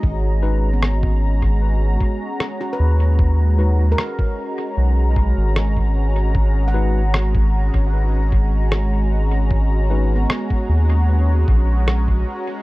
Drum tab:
SD |----r-------r---|----r-------r---|----r-------r---|----r-------r---|
BD |o----o-o--o-----|o----o----o--o--|o----o-o--o-----|o----o----o--o--|